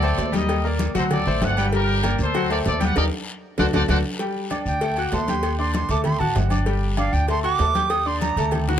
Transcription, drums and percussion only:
0.02 high conga, low agogo
0.18 cowbell, high conga, low timbale, short guiro
0.33 cowbell, high conga, low agogo, short guiro
0.49 cowbell, high conga, low agogo, long guiro
0.65 high conga
0.79 cowbell, high conga, low timbale, low agogo, short guiro
0.95 cowbell, short guiro
1.11 cowbell, high conga, low conga, low agogo, long guiro
1.26 high conga, low conga
1.41 cowbell, high conga, low timbale, low agogo, short guiro
1.57 low agogo, short guiro
1.73 cowbell, long guiro
1.88 high conga
2.03 cowbell, high conga, low timbale, low agogo, short guiro
2.19 short guiro
2.34 cowbell, high conga, low agogo, long guiro
2.50 high conga, low agogo
2.65 cowbell, high conga, low timbale, short guiro
2.81 cowbell, high conga, low agogo, short guiro
2.96 cowbell, high conga, high timbale, long guiro
3.58 cowbell, high conga, high timbale, long guiro
3.73 cowbell, high conga, high timbale, long guiro
3.89 cowbell, high conga, high timbale, long guiro
4.19 cowbell, high conga, long guiro
4.36 high conga
4.50 cowbell, high conga, low timbale, low agogo, short guiro
4.66 high conga, short guiro
4.81 cowbell, high conga, low agogo, long guiro
4.96 high conga, low agogo
5.12 cowbell, high conga, low timbale, short guiro
5.28 cowbell, high conga, low agogo, short guiro
5.43 cowbell, low agogo, long guiro
5.59 high conga
5.73 cowbell, high conga, low timbale, low agogo, short guiro
5.89 cowbell, short guiro
6.04 cowbell, high conga, low conga, low agogo, long guiro
6.21 high conga, low conga
6.36 cowbell, high conga, low timbale, low agogo, short guiro
6.50 high conga, low agogo, short guiro
6.66 cowbell, high conga, long guiro
6.82 high conga
6.97 cowbell, high conga, low timbale, low agogo, short guiro
7.13 high conga, short guiro
7.28 cowbell, high conga, low agogo, long guiro
7.44 high conga, low agogo
7.59 cowbell, high conga, low timbale, short guiro
7.75 cowbell, high conga, low agogo, short guiro
7.90 cowbell, high conga, low agogo, long guiro
8.06 high conga
8.21 cowbell, high conga, low timbale, low agogo, short guiro
8.37 cowbell, short guiro
8.51 cowbell, high conga, low conga, low agogo, long guiro
8.68 high bongo, high conga, low conga

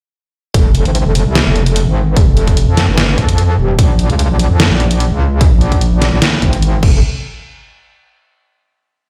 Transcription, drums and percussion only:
0.54 kick, closed hi-hat
0.75 closed hi-hat
0.85 closed hi-hat
0.95 closed hi-hat
1.15 open hi-hat
1.35 snare, closed hi-hat
1.56 closed hi-hat
1.66 closed hi-hat
1.76 closed hi-hat
2.17 kick, closed hi-hat
2.37 closed hi-hat
2.47 kick, closed hi-hat
2.57 closed hi-hat
2.77 snare, open hi-hat
2.98 snare, closed hi-hat
3.18 kick, closed hi-hat
3.29 closed hi-hat
3.38 closed hi-hat
3.79 kick, closed hi-hat
3.99 closed hi-hat
4.10 closed hi-hat
4.19 closed hi-hat
4.39 open hi-hat
4.60 snare, closed hi-hat
4.80 closed hi-hat
4.91 closed hi-hat
5.00 closed hi-hat
5.41 kick, closed hi-hat
5.61 closed hi-hat
5.72 kick, closed hi-hat
5.81 closed hi-hat
6.02 snare, open hi-hat
6.22 snare, closed hi-hat
6.42 kick, closed hi-hat
6.53 closed hi-hat
6.62 closed hi-hat
6.83 kick, crash

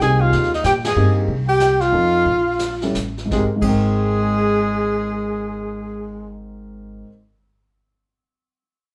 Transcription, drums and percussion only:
0.01 kick, snare
0.33 brush sweep, kick, snare
0.43 snare
0.54 snare
0.64 kick, snare, hi-hat pedal
0.84 snare, ride
1.28 brush sweep, kick
1.60 snare, hi-hat pedal
1.81 snare
2.26 brush sweep, kick
2.59 snare, hi-hat pedal
2.82 snare
2.95 snare, hi-hat pedal
3.18 snare
3.31 kick, snare
3.62 kick, crash

